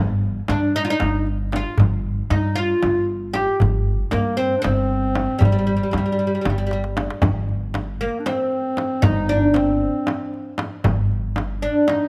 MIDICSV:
0, 0, Header, 1, 6, 480
1, 0, Start_track
1, 0, Tempo, 517688
1, 1662, Time_signature, 7, 3, 24, 8
1, 11201, End_track
2, 0, Start_track
2, 0, Title_t, "Clarinet"
2, 0, Program_c, 0, 71
2, 460, Note_on_c, 0, 62, 75
2, 697, Note_on_c, 0, 63, 75
2, 711, Note_off_c, 0, 62, 0
2, 830, Note_off_c, 0, 63, 0
2, 838, Note_on_c, 0, 63, 61
2, 1161, Note_off_c, 0, 63, 0
2, 1434, Note_on_c, 0, 65, 80
2, 1652, Note_off_c, 0, 65, 0
2, 2156, Note_on_c, 0, 63, 75
2, 2402, Note_on_c, 0, 65, 79
2, 2416, Note_off_c, 0, 63, 0
2, 2872, Note_off_c, 0, 65, 0
2, 3110, Note_on_c, 0, 67, 77
2, 3329, Note_off_c, 0, 67, 0
2, 3829, Note_on_c, 0, 58, 79
2, 4065, Note_on_c, 0, 60, 74
2, 4079, Note_off_c, 0, 58, 0
2, 4235, Note_off_c, 0, 60, 0
2, 4241, Note_on_c, 0, 62, 53
2, 4318, Note_on_c, 0, 60, 86
2, 4332, Note_off_c, 0, 62, 0
2, 5037, Note_on_c, 0, 55, 68
2, 5051, Note_off_c, 0, 60, 0
2, 6469, Note_off_c, 0, 55, 0
2, 7425, Note_on_c, 0, 58, 63
2, 7598, Note_on_c, 0, 62, 49
2, 7612, Note_off_c, 0, 58, 0
2, 7662, Note_on_c, 0, 60, 79
2, 7676, Note_off_c, 0, 62, 0
2, 8384, Note_on_c, 0, 63, 91
2, 8398, Note_off_c, 0, 60, 0
2, 8860, Note_on_c, 0, 60, 73
2, 8874, Note_off_c, 0, 63, 0
2, 9819, Note_off_c, 0, 60, 0
2, 10784, Note_on_c, 0, 62, 68
2, 11018, Note_on_c, 0, 63, 79
2, 11032, Note_off_c, 0, 62, 0
2, 11201, Note_off_c, 0, 63, 0
2, 11201, End_track
3, 0, Start_track
3, 0, Title_t, "Oud"
3, 0, Program_c, 1, 24
3, 461, Note_on_c, 1, 62, 80
3, 699, Note_off_c, 1, 62, 0
3, 703, Note_on_c, 1, 63, 97
3, 763, Note_off_c, 1, 63, 0
3, 785, Note_on_c, 1, 65, 80
3, 834, Note_off_c, 1, 65, 0
3, 838, Note_on_c, 1, 63, 100
3, 1161, Note_off_c, 1, 63, 0
3, 1443, Note_on_c, 1, 65, 85
3, 1657, Note_off_c, 1, 65, 0
3, 2138, Note_on_c, 1, 63, 79
3, 2366, Note_off_c, 1, 63, 0
3, 2369, Note_on_c, 1, 65, 93
3, 2822, Note_off_c, 1, 65, 0
3, 3092, Note_on_c, 1, 67, 84
3, 3320, Note_off_c, 1, 67, 0
3, 3816, Note_on_c, 1, 58, 78
3, 4051, Note_on_c, 1, 60, 82
3, 4066, Note_off_c, 1, 58, 0
3, 4270, Note_off_c, 1, 60, 0
3, 4281, Note_on_c, 1, 60, 93
3, 4989, Note_off_c, 1, 60, 0
3, 4993, Note_on_c, 1, 55, 67
3, 5043, Note_off_c, 1, 55, 0
3, 5055, Note_on_c, 1, 55, 48
3, 5110, Note_off_c, 1, 55, 0
3, 5121, Note_on_c, 1, 55, 55
3, 5168, Note_off_c, 1, 55, 0
3, 5179, Note_on_c, 1, 55, 45
3, 5243, Note_off_c, 1, 55, 0
3, 5254, Note_on_c, 1, 55, 52
3, 5335, Note_off_c, 1, 55, 0
3, 5347, Note_on_c, 1, 55, 47
3, 5397, Note_off_c, 1, 55, 0
3, 5409, Note_on_c, 1, 55, 47
3, 5471, Note_off_c, 1, 55, 0
3, 5482, Note_on_c, 1, 55, 40
3, 5530, Note_off_c, 1, 55, 0
3, 5541, Note_on_c, 1, 55, 48
3, 5605, Note_off_c, 1, 55, 0
3, 5617, Note_on_c, 1, 55, 42
3, 5666, Note_off_c, 1, 55, 0
3, 5677, Note_on_c, 1, 55, 49
3, 5728, Note_off_c, 1, 55, 0
3, 5739, Note_on_c, 1, 55, 43
3, 5802, Note_off_c, 1, 55, 0
3, 5813, Note_on_c, 1, 55, 50
3, 5874, Note_off_c, 1, 55, 0
3, 5886, Note_on_c, 1, 55, 44
3, 5937, Note_off_c, 1, 55, 0
3, 5948, Note_on_c, 1, 55, 47
3, 6015, Note_off_c, 1, 55, 0
3, 6026, Note_on_c, 1, 55, 45
3, 6090, Note_off_c, 1, 55, 0
3, 6101, Note_on_c, 1, 55, 51
3, 6170, Note_off_c, 1, 55, 0
3, 6181, Note_on_c, 1, 55, 49
3, 6227, Note_off_c, 1, 55, 0
3, 6238, Note_on_c, 1, 55, 56
3, 6319, Note_off_c, 1, 55, 0
3, 7425, Note_on_c, 1, 58, 77
3, 7654, Note_off_c, 1, 58, 0
3, 7658, Note_on_c, 1, 60, 80
3, 8365, Note_on_c, 1, 63, 95
3, 8400, Note_off_c, 1, 60, 0
3, 8611, Note_off_c, 1, 63, 0
3, 8615, Note_on_c, 1, 62, 85
3, 8840, Note_off_c, 1, 62, 0
3, 8844, Note_on_c, 1, 60, 79
3, 9774, Note_off_c, 1, 60, 0
3, 10778, Note_on_c, 1, 62, 77
3, 11001, Note_off_c, 1, 62, 0
3, 11011, Note_on_c, 1, 63, 79
3, 11201, Note_off_c, 1, 63, 0
3, 11201, End_track
4, 0, Start_track
4, 0, Title_t, "Upright bass"
4, 0, Program_c, 2, 32
4, 0, Note_on_c, 2, 31, 79
4, 358, Note_off_c, 2, 31, 0
4, 456, Note_on_c, 2, 43, 78
4, 838, Note_off_c, 2, 43, 0
4, 943, Note_on_c, 2, 31, 82
4, 1512, Note_off_c, 2, 31, 0
4, 1662, Note_on_c, 2, 31, 83
4, 2041, Note_off_c, 2, 31, 0
4, 2137, Note_on_c, 2, 43, 84
4, 2518, Note_off_c, 2, 43, 0
4, 2625, Note_on_c, 2, 31, 85
4, 3192, Note_off_c, 2, 31, 0
4, 3352, Note_on_c, 2, 31, 84
4, 3727, Note_off_c, 2, 31, 0
4, 3829, Note_on_c, 2, 43, 82
4, 4205, Note_off_c, 2, 43, 0
4, 4308, Note_on_c, 2, 31, 90
4, 4874, Note_off_c, 2, 31, 0
4, 5020, Note_on_c, 2, 31, 82
4, 5400, Note_off_c, 2, 31, 0
4, 5505, Note_on_c, 2, 43, 76
4, 5882, Note_off_c, 2, 43, 0
4, 5988, Note_on_c, 2, 31, 90
4, 6553, Note_off_c, 2, 31, 0
4, 6711, Note_on_c, 2, 31, 84
4, 7464, Note_off_c, 2, 31, 0
4, 8380, Note_on_c, 2, 31, 99
4, 9138, Note_off_c, 2, 31, 0
4, 10059, Note_on_c, 2, 31, 85
4, 10817, Note_off_c, 2, 31, 0
4, 11201, End_track
5, 0, Start_track
5, 0, Title_t, "Darbuka"
5, 460, Note_on_c, 9, 63, 59
5, 553, Note_off_c, 9, 63, 0
5, 930, Note_on_c, 9, 63, 59
5, 1023, Note_off_c, 9, 63, 0
5, 1174, Note_on_c, 9, 62, 23
5, 1266, Note_off_c, 9, 62, 0
5, 1413, Note_on_c, 9, 63, 51
5, 1506, Note_off_c, 9, 63, 0
5, 1647, Note_on_c, 9, 64, 85
5, 1739, Note_off_c, 9, 64, 0
5, 2143, Note_on_c, 9, 63, 61
5, 2236, Note_off_c, 9, 63, 0
5, 2620, Note_on_c, 9, 63, 58
5, 2713, Note_off_c, 9, 63, 0
5, 2869, Note_on_c, 9, 62, 23
5, 2962, Note_off_c, 9, 62, 0
5, 3110, Note_on_c, 9, 63, 61
5, 3203, Note_off_c, 9, 63, 0
5, 3352, Note_on_c, 9, 64, 86
5, 3445, Note_off_c, 9, 64, 0
5, 3829, Note_on_c, 9, 63, 61
5, 3922, Note_off_c, 9, 63, 0
5, 4067, Note_on_c, 9, 62, 25
5, 4160, Note_off_c, 9, 62, 0
5, 4306, Note_on_c, 9, 63, 65
5, 4398, Note_off_c, 9, 63, 0
5, 4546, Note_on_c, 9, 62, 26
5, 4639, Note_off_c, 9, 62, 0
5, 4779, Note_on_c, 9, 63, 63
5, 4872, Note_off_c, 9, 63, 0
5, 5013, Note_on_c, 9, 64, 83
5, 5106, Note_off_c, 9, 64, 0
5, 5508, Note_on_c, 9, 63, 61
5, 5600, Note_off_c, 9, 63, 0
5, 5752, Note_on_c, 9, 62, 28
5, 5844, Note_off_c, 9, 62, 0
5, 5986, Note_on_c, 9, 63, 60
5, 6078, Note_off_c, 9, 63, 0
5, 6223, Note_on_c, 9, 63, 51
5, 6316, Note_off_c, 9, 63, 0
5, 6342, Note_on_c, 9, 62, 54
5, 6434, Note_off_c, 9, 62, 0
5, 6468, Note_on_c, 9, 63, 69
5, 6560, Note_off_c, 9, 63, 0
5, 6587, Note_on_c, 9, 62, 77
5, 6680, Note_off_c, 9, 62, 0
5, 6702, Note_on_c, 9, 64, 83
5, 6795, Note_off_c, 9, 64, 0
5, 6942, Note_on_c, 9, 62, 25
5, 7035, Note_off_c, 9, 62, 0
5, 7186, Note_on_c, 9, 63, 75
5, 7279, Note_off_c, 9, 63, 0
5, 7666, Note_on_c, 9, 63, 69
5, 7759, Note_off_c, 9, 63, 0
5, 7898, Note_on_c, 9, 62, 26
5, 7991, Note_off_c, 9, 62, 0
5, 8143, Note_on_c, 9, 63, 67
5, 8236, Note_off_c, 9, 63, 0
5, 8379, Note_on_c, 9, 64, 94
5, 8472, Note_off_c, 9, 64, 0
5, 8620, Note_on_c, 9, 62, 25
5, 8713, Note_off_c, 9, 62, 0
5, 8867, Note_on_c, 9, 63, 70
5, 8960, Note_off_c, 9, 63, 0
5, 9348, Note_on_c, 9, 63, 70
5, 9441, Note_off_c, 9, 63, 0
5, 9586, Note_on_c, 9, 62, 26
5, 9678, Note_off_c, 9, 62, 0
5, 9820, Note_on_c, 9, 63, 75
5, 9913, Note_off_c, 9, 63, 0
5, 10058, Note_on_c, 9, 64, 89
5, 10150, Note_off_c, 9, 64, 0
5, 10306, Note_on_c, 9, 62, 27
5, 10399, Note_off_c, 9, 62, 0
5, 10551, Note_on_c, 9, 63, 67
5, 10644, Note_off_c, 9, 63, 0
5, 11030, Note_on_c, 9, 63, 62
5, 11123, Note_off_c, 9, 63, 0
5, 11201, End_track
6, 0, Start_track
6, 0, Title_t, "Frame drum"
6, 448, Note_on_c, 9, 64, 76
6, 541, Note_off_c, 9, 64, 0
6, 926, Note_on_c, 9, 64, 75
6, 1019, Note_off_c, 9, 64, 0
6, 1419, Note_on_c, 9, 64, 67
6, 1512, Note_off_c, 9, 64, 0
6, 1665, Note_on_c, 9, 64, 80
6, 1758, Note_off_c, 9, 64, 0
6, 2136, Note_on_c, 9, 64, 69
6, 2229, Note_off_c, 9, 64, 0
6, 2620, Note_on_c, 9, 64, 70
6, 2713, Note_off_c, 9, 64, 0
6, 3096, Note_on_c, 9, 64, 60
6, 3189, Note_off_c, 9, 64, 0
6, 3337, Note_on_c, 9, 64, 64
6, 3430, Note_off_c, 9, 64, 0
6, 3813, Note_on_c, 9, 64, 67
6, 3906, Note_off_c, 9, 64, 0
6, 4306, Note_on_c, 9, 64, 71
6, 4399, Note_off_c, 9, 64, 0
6, 4779, Note_on_c, 9, 64, 65
6, 4872, Note_off_c, 9, 64, 0
6, 5025, Note_on_c, 9, 64, 75
6, 5117, Note_off_c, 9, 64, 0
6, 5500, Note_on_c, 9, 64, 69
6, 5592, Note_off_c, 9, 64, 0
6, 5984, Note_on_c, 9, 64, 74
6, 6077, Note_off_c, 9, 64, 0
6, 6460, Note_on_c, 9, 64, 72
6, 6553, Note_off_c, 9, 64, 0
6, 6692, Note_on_c, 9, 64, 92
6, 6784, Note_off_c, 9, 64, 0
6, 7178, Note_on_c, 9, 64, 64
6, 7270, Note_off_c, 9, 64, 0
6, 7659, Note_on_c, 9, 64, 73
6, 7752, Note_off_c, 9, 64, 0
6, 8132, Note_on_c, 9, 64, 64
6, 8224, Note_off_c, 9, 64, 0
6, 8370, Note_on_c, 9, 64, 90
6, 8463, Note_off_c, 9, 64, 0
6, 8848, Note_on_c, 9, 64, 67
6, 8941, Note_off_c, 9, 64, 0
6, 9336, Note_on_c, 9, 64, 76
6, 9428, Note_off_c, 9, 64, 0
6, 9809, Note_on_c, 9, 64, 70
6, 9901, Note_off_c, 9, 64, 0
6, 10053, Note_on_c, 9, 64, 92
6, 10146, Note_off_c, 9, 64, 0
6, 10532, Note_on_c, 9, 64, 73
6, 10625, Note_off_c, 9, 64, 0
6, 11013, Note_on_c, 9, 64, 73
6, 11106, Note_off_c, 9, 64, 0
6, 11201, End_track
0, 0, End_of_file